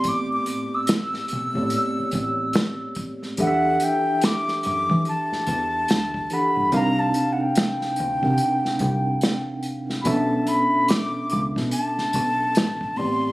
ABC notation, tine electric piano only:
X:1
M:4/4
L:1/16
Q:"Swing 16ths" 1/4=72
K:Em
V:1 name="Tine electric piano"
[A,,A,B,CGd]4- [A,,A,B,CGd] z2 [A,,A,B,CG^cd]6- [A,,A,B,=CG^cd] z2 | [E,DGAe]6- [E,DGAe] z6 z [E,DGAf]2 | [C,CD_E_B=f]6 z [C,CDEB^fg]6- [C,CDEBfg] z2 | [B,,B,^CDAe]6- [B,,B,CDAe] z6 z [A,,A,B,=CGd]2 |]